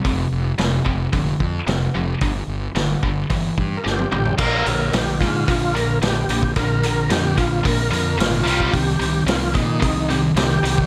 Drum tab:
CC |----------------|----------------|x---------------|----------------|
HH |o---o---o---o---|o---o---o-------|--o-o-o-o-o-o-o-|o-o-o-o-o-o-o-o-|
SD |----o-------o---|----o-------o---|----o-------o---|----o-------o---|
T1 |----------------|-------------o--|----------------|----------------|
T2 |----------------|--------------o-|----------------|----------------|
FT |----------------|---------------o|----------------|----------------|
BD |o-----o-o-o-----|o-----o-o-o-----|o-----o-o------o|o-----o-o------o|

CC |----------------|
HH |o-o-o-o-o-o-o-o-|
SD |----o-------o---|
T1 |----------------|
T2 |----------------|
FT |----------------|
BD |o-----o-o------o|